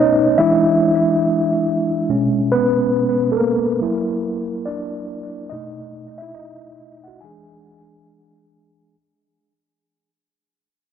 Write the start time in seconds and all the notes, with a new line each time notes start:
Already playing: B2 A3 B3 C#4 D#4 B4 C#5 D#5
0.38 E3 G#3 D4 E4 E5
2.09 B2 G#3 C#4
2.52 B3 B4
3.32 A4
3.37 A#3 A#4
3.81 F#3 A#3 E4
4.66 D4 D5
5.50 B2 A3 D#4 D#5
6.18 E5
6.22 E4
6.35 D#5
6.39 D#4
7.04 F#5
7.08 F#4
7.21 E3 G#3 D4 G#5
7.25 G#4